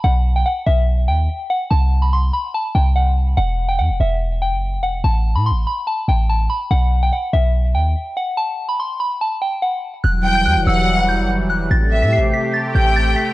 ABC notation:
X:1
M:4/4
L:1/16
Q:1/4=144
K:Em
V:1 name="Synth bell"
f3 g f2 e2 z2 g4 f2 | a3 b c'2 b2 a2 g2 f2 z2 | f3 g f2 e2 z2 g4 f2 | a3 b c'2 b2 a2 g2 a2 b2 |
f3 g f2 e2 z2 g4 f2 | a3 b c'2 b2 a2 g2 f2 z2 | f'3 g' f'2 e'2 z2 g'4 f'2 | a'3 b' c''2 b'2 a'2 g'2 a'2 b'2 |]
V:2 name="Violin section"
z16 | z16 | z16 | z16 |
z16 | z16 | z2 g4 f6 z4 | z2 e2 z6 g6 |]
V:3 name="Analog synth pad" clef=bass
z16 | z16 | z16 | z16 |
z16 | z16 | [E,F,G,]16 | [C,A,G]16 |]
V:4 name="808-style bass" clef=bass
B,,,4 z2 B,,,4 ^D,,2 z4 | C,,6 z4 C,,6 | E,,,4 E,, E,,, E,,,4- E,,, F,,,2- F,,,/2 E,,,2- E,,,/2 | A,,,3 A,,3/2 A,,,3/2 z4 A,,,4 z2 |
B,,,4 z2 B,,,4 ^D,,2 z4 | z16 | E,,,4 E,, E,,, E,,,4- E,,, F,,,2- F,,,/2 E,,,2- E,,,/2 | A,,,3 A,,3/2 A,,,3/2 z4 A,,,4 z2 |]